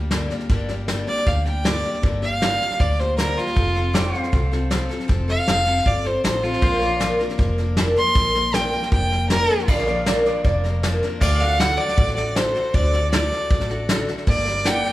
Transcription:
Already playing: D2 G3 A#3 D4 G4 D5
0.11 G2 D3 G3 A#3 D4 G4, snare, hi-hat pedal
0.30 G3 A#3 D4 G4, snare
0.40 snare
0.49 G1 G2 D3 G3 A#3 D4 G4, kick, snare
0.68 G3 A#3 D4 G4, snare
0.88 G2 D3 G3 A#3 D4 G4, snare, hi-hat pedal
1.07 G3 A#3 D4 G4 D5, snare
1.17 snare
1.26 D2 G3 A#3 D4 G4 F5, kick, snare
1.46 G3 A#3 D4 G4 G5, snare
1.64 G2 D3 G3 A#3 D4 G4 D5, snare, hi-hat pedal
1.83 G3 A#3 D4 G4, snare
1.94 snare
2.02 G1 G2 D3 G3 A#3 D4 G4, kick, snare
2.22 G3 A#3 D4 G4 F5, snare
2.41 G2 D3 G3 A#3 D4 G4, snare, hi-hat pedal
2.60 G3 A#3 D4 G4, snare
2.71 snare
2.79 D2 G3 A#3 D4 G4 D5, kick, snare
2.98 G3 A#3 D4 G4 C5, snare
3.17 G2 D3 G3 A#3 D4 G4 A#4, snare, hi-hat pedal
3.37 G3 A#3 D4 F4 G4, snare
3.47 snare
3.56 F1 F3 C4 F4 A4, kick, snare
3.74 C4 F4 A4, snare
3.93 F3 C4 F4 A4 D5 G5, snare, hi-hat pedal
4.13 C4 F4 A4, snare
4.19 C5 F5
4.24 snare
4.32 C2 F3 C4 F4 A4, kick, snare
4.52 C4 F4 A4, snare
4.70 F3 C4 F4 A4, snare, hi-hat pedal
4.89 C4 F4 A4, snare
5.00 snare
5.08 F1 F3 C4 F4 A4, kick, snare
5.28 C4 F4 A4 F5, snare
5.47 F1 F3 C4 F4 A4, snare, hi-hat pedal
5.66 C4 F4 A4, snare
5.76 snare
5.86 G1 F3 C4 F4 A4 D5, kick, snare
6.04 C4 F4 A4 C5, snare
6.24 A1 F3 C4 F4 A4 C5, snare, hi-hat pedal
6.43 C4 F4 A4, snare
6.53 snare
6.61 A#1 A#2 D3 F3 A#3 D4 A#4 C5 F5, kick, snare
6.81 F3 A#3 D4 A#4, snare
6.88 D5
7.00 A#2 D3 F3 A#3 D4 A#4, snare, hi-hat pedal
7.19 F3 A#3 D4 A#4, snare
7.29 snare
7.38 F1 F3 A#3 D4 A#4, kick, snare
7.58 F3 A#3 D4 A#4, snare
7.77 A#2 D3 F3 A#3 D4 A#4, snare, hi-hat pedal
7.96 F3 A#3 D4 A#4 C6, snare
8.06 snare
8.15 A#1 A#2 D3 F3 A#3 D4 A#4, kick, snare
8.35 F3 A#3 D4 A#4, snare
8.53 A#2 D3 F3 A#3 D4 A#4 G5, snare, hi-hat pedal
8.72 F3 A#3 D4 A#4, snare
8.83 snare
8.92 F1 F3 A#3 D4 A#4 G5, kick, snare
9.11 F3 A#3 D4 A#4, snare
9.30 A#2 D3 F3 A#3 D4 A#4, snare, hi-hat pedal
9.49 F3 A#3 D4 A#4, snare
9.59 snare
9.68 A#1 A#2 D3 F3 A#3 D4 A#4 D5 F5, kick, snare, crash
9.78 snare
9.87 F3 A#3 D4 A#4 D5, snare
10.06 A#2 D3 F3 A#3 D4 A#4 D5, snare, hi-hat pedal
10.25 F3 A#3 D4 A#4 D5, snare
10.44 F1 F3 A#3 D4 A#4 D5, kick, snare
10.64 F3 A#3 D4 A#4, snare
10.83 A#2 D3 F3 A#3 D4 A#4, snare, hi-hat pedal
11.03 F3 A#3 D4 A#4, snare
11.21 D2 D3 A3 D4 F#4 A4 D5 F5, kick, snare, crash
11.41 D4 F#4 A4 F5 F#5, snare
11.59 D3 A3 D4 F#4 A4 F#5, snare, hi-hat pedal
11.78 D4 F#4 A4 D5, snare
11.88 snare
11.98 A1 A3 D4 F#4 A4, kick, snare
12.08 snare
12.16 D4 F#4 A4 D5, snare
12.35 D3 A3 D4 F#4 A4 C5, snare, hi-hat pedal
12.55 D4 F#4 A4, snare
12.74 D2 D3 A3 D4 F#4 A4 D5, kick, snare
12.93 D4 F#4 A4, snare
13.12 D3 A3 D4 F#4 A4 D5, snare, hi-hat pedal
13.31 D4 F#4 A4, snare
13.50 A1 A3 D4 F#4 A4, kick, snare
13.60 snare
13.69 D4 F#4 A4, snare
13.89 D3 A3 D4 F#4 A4, snare, hi-hat pedal
14.08 D4 F#4 A4, snare
14.18 snare
14.27 G1 G2 D3 G3 A#3 D4 A#4 D5, kick, snare
14.46 G3 A#3 D4 A#4, snare
14.65 G2 D3 G3 A#3 D4 A#4 D5 F#5 G5, snare, hi-hat pedal
14.84 G3 A#3 D4 A#4 G5, snare

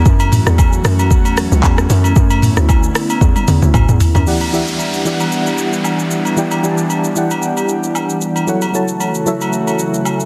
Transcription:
Already playing: E3
0.06 F#2 F#3 A3 C#4 F#4, kick, shaker
0.20 high agogo, shaker
0.32 mid tom, open hi-hat, shaker
0.46 E2, cross-stick, shaker
0.58 kick, high agogo, low woodblock, shaker
0.73 shaker
0.85 F#2, cross-stick, open hi-hat, shaker
0.99 high agogo, shaker
1.11 E2, kick, shaker
1.25 high agogo, shaker
1.37 cross-stick, open hi-hat, shaker
1.52 C#2, shaker
1.63 E2, kick, clap, high agogo, low woodblock, shaker
1.78 cross-stick, shaker
1.90 F#2 D3 B3 E4, open hi-hat, shaker
2.04 high agogo, shaker
2.16 F#2, kick, shaker
2.30 high agogo, shaker
2.42 mid tom, open hi-hat, shaker
2.57 D2, cross-stick, shaker
2.69 kick, high agogo, low woodblock, shaker
2.83 shaker
2.95 cross-stick, open hi-hat, shaker
3.10 high agogo, shaker
3.21 E2, kick, high tom, shaker
3.36 high tom, high agogo, shaker
3.48 E2, open hi-hat, mid tom, shaker
3.62 D2, mid tom, shaker
3.74 D2, kick, mid tom, high agogo, low woodblock, shaker
3.89 E2, mid tom, shaker
4.00 floor tom, open hi-hat, shaker
4.15 F#2, floor tom, high agogo, shaker
4.26 E3 G3 B3 D4 E4 G4 D5 F#5, downlifter, shaker
4.41 high agogo, shaker
4.52 E3 E4 G4 D5 E5, shaker
4.67 shaker
4.79 high agogo, shaker
4.94 shaker
5.05 E3 E4 G4 D5 E5, shaker
5.14 F#5
5.20 high agogo, shaker
5.32 shaker
5.46 high agogo, shaker
5.58 shaker
5.73 shaker
5.84 high agogo, low woodblock, shaker
5.99 shaker
6.11 shaker
6.25 high agogo, shaker
6.37 E3 E4 G4 D5 G5, shaker
6.51 high agogo, shaker
6.63 E3 E4 G4 D5 G#5, shaker
6.72 A5
6.78 shaker
6.90 high agogo, shaker
7.04 shaker
7.16 E3 E4 G4 D5 F#5, shaker
7.31 high agogo, shaker
7.43 shaker
7.57 high agogo, shaker
7.69 shaker
7.84 shaker
7.95 high agogo, low woodblock, shaker
8.10 shaker
8.21 shaker
8.36 high agogo, shaker
8.47 C#3 E3 F#3 A3 E4 F#4 A4 C#5 F#5, shaker
8.62 high agogo, shaker
8.73 F#3 E4 A4 C#5 A5, shaker
8.88 shaker
9.00 high agogo, shaker
9.15 shaker
9.26 F#3 E4 A4 C#5 E5, shaker
9.41 high agogo, shaker
9.53 shaker
9.67 high agogo, shaker
9.79 shaker
9.94 shaker
10.05 high agogo, low woodblock, shaker
10.20 shaker

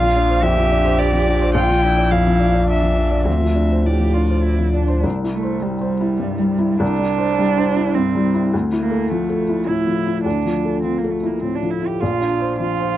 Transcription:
Already playing: A#1 F4 F5
0.02 F3
0.16 D4
0.29 C5
0.42 F2 G4 E5
0.57 F3
0.71 D4
0.85 C5
0.99 D5
1.13 F3
1.28 D4
1.41 C5
1.54 A#1 F4 G5
1.69 F3
1.84 D4 E4
1.98 D5
2.11 F2 F5
2.27 F3
2.40 D4
2.54 D5
2.68 D4 E5
2.82 F3
2.96 D4
3.11 D5
3.25 D2 C4 E5
3.40 F3
3.55 D4
3.71 C5
3.85 A2 G4 D5
4.00 F3
4.14 D4 F4
4.29 C5
4.43 E4
4.59 F3
4.74 D4
4.88 C5
5.04 C2
5.24 E4
5.33 A3
5.43 C5
5.62 G3
5.81 C5
6.01 E4
6.20 G2
6.39 G3
6.59 E4
6.80 C2 D4
6.99 G3
7.18 C5
7.39 G3
7.58 C5
7.77 E4
7.94 G2 C4
8.15 G3
8.35 E4
8.53 D2
8.72 E4
8.80 A#3
8.91 A4
9.10 F3 A3
9.29 A4
9.49 E4
9.68 A2 E4
9.87 F3
10.07 E4
10.24 D2 D4
10.46 F3
10.65 A4
10.83 F3 C4
10.98 A#3
11.04 A4
11.11 A3
11.23 A#3 E4
11.41 A2 C4
11.56 D4
11.63 F3
11.70 E4
11.82 E4
11.87 G4
12.00 A#1 F4
12.20 D4
12.40 C5
12.60 F3 F4
12.80 C5

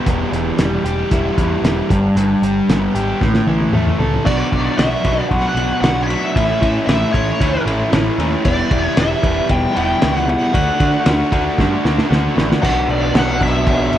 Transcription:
Already playing: G3 B3 G4
0.05 E1 E2, kick, closed hi-hat
0.32 E1 E3, closed hi-hat
0.59 E1 G3, snare, closed hi-hat
0.84 E1 G4, closed hi-hat
1.11 E1 E4, kick, closed hi-hat
1.38 E2 E3, kick, closed hi-hat
1.62 E1 G3, snare, closed hi-hat
1.90 G1 G2, kick, closed hi-hat
2.16 G1 G2, closed hi-hat
2.42 G1 G3, closed hi-hat
2.69 G1 B3, snare, closed hi-hat
2.95 G#1 G4, closed hi-hat
3.21 A1 A2, kick, snare
3.34 snare
3.47 A1 E3, high tom
3.61 high tom
3.73 E2 A3, mid tom
3.87 mid tom
3.99 C#2 A4, floor tom
4.14 floor tom
4.25 B1 B2 F#3 B3 D4 F#4 D5, kick, crash
4.51 B1 B2 F#3 B3 D4 F#4, kick, ride
4.78 B1 B2 F#3 B3 D4 F#4 E5, snare, ride
5.05 B1 B2 F#3 B3 D4 F#4, kick, ride
5.21 D5
5.29 B1 B2 F#3 B3 F#5, kick, ride
5.33 D4 F#4
5.55 B1 B2 F#3 B3 D4, ride
5.59 F#4
5.81 B1 B2 F#3 B3 D4 F#4 F#5, snare, ride
6.03 C#5
6.07 B2 F#3 B3 D4 F#4 E5, ride
6.35 A1 A2 E3 A3 C#4 E4, kick, ride
6.61 A2 E3 A3 C#4 E4, kick, ride
6.86 A1 A2 E3 A3 C#4 E4 E5, snare, ride
7.12 A1 A2 E3 A3 C#4 E4 C#5, kick, ride
7.40 D2 A2 E3 A3 C#4 E4, kick, ride
7.66 A1 A2 E3 A3 C#4 E4, ride
7.91 A1 A2 E3 A3 C#4 E4, snare, ride
8.18 D#2 A2 E3 A3 C#4 E4, ride
8.44 E1 E2 B2 E3 G3 B3 E4 D5, kick, ride
8.70 E1 E2 B2 E3 G3 B3 E4, kick, ride
8.84 C#5
8.96 E1 E2 B2 E3 G3 B3 E4 E5, snare, ride
9.22 E1 E2 B2 E3 G3 B3 E4, kick, ride
9.49 E1 E2 B2 E3 G3 B3 E4 G5, kick, ride
9.74 E1 E2 B2 E3 G3 B3 E4 G5, ride
10.00 C#2 E2 B2 E3 G3 B3 E4, snare, ride
10.16 F#5, snare
10.27 E2 B2 E3 G3 B3 E4 F#5, ride
10.53 D2 D3 A3 D4 F#4, kick, ride
10.80 D3 A3 D4 F#4, kick, ride
11.05 D2 D3 A3 D4 F#4, snare, ride
11.32 D2 D3 A3 D4 F#4, kick, ride
11.58 G2 D3 A3 D4 F#4, kick, snare
11.84 D2 D3 A3 D4 F#4, snare
11.98 snare
12.10 D2 D3 A3 D4 F#4, snare
12.35 A1 D3 A3 D4 F#4, snare
12.52 snare
12.62 B1 B2 F#3 B3 D4 F#4 F#5, kick, crash
12.89 B1 D5, crash
13.14 B1 F#5, snare, crash
13.40 B1 B2 F#3 B3 D4 F#4 E5, kick, crash
13.67 B1, kick, crash
13.92 F#1, crash

